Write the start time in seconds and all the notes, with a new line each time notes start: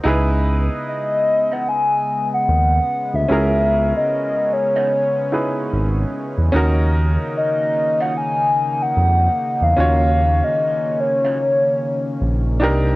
0.04 C#2 C#3 G#3 B3 D#4 E4 G#4 B4 D#5
0.88 D#5
1.51 E3 B3 D#4 F#5
1.69 G#5
2.34 F#5
2.49 D#2
3.13 D2 E5
3.28 C#2 C#4 E4 G#4 A#4
3.97 D#5
4.53 C#5
4.76 E3 B3 D#4
5.32 D#4 E4 G#4 B4
5.73 G#1
6.38 E2
6.52 D#2 C#3 D#3 A#3 C#4 D#4 F#4
6.56 A#4
7.37 D#5
8.00 F#3 C#4 F4 F#5
8.17 G#5
8.73 G#5
8.82 F#5
8.97 F2
9.62 E2 F5
9.77 D#2 C#4 F4 F#4 C#5
10.44 D#5
11.01 C#5
11.25 F#3 C#4 F4
12.21 A#1
12.60 C2 C3 G3 A#3 D4 D#4 G4 A#4